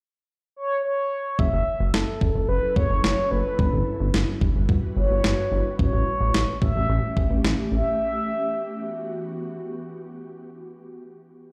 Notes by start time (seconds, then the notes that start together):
0.56 C#5
0.84 C#5
1.39 F#1 F#3 C#4 E4 A4 E5, kick
1.53 F#1
1.80 F#1
1.94 F#1 A4, snare
2.21 F#1, kick
2.35 F#1
2.49 F#1 B4
2.76 F#1 C#5, kick
2.90 F#1
3.04 F#1 C#5, snare
3.31 F#1 B4
3.59 G1 G3 F#4 B4, kick
3.73 G1
4.00 G1
4.14 G1, snare
4.41 G1, kick
4.55 G1
4.69 G1, kick
4.97 G1 C#5
5.10 G1
5.24 G1, snare
5.52 G1
5.79 A1 A3 C#4 G4 C#5, kick
5.93 A1
6.21 A1
6.34 A1, snare
6.62 A1 E5, kick
6.75 A1
6.89 A1
7.17 A1, kick
7.30 A1
7.44 A1, snare
7.72 A1 E5
7.99 E3 B3 F#4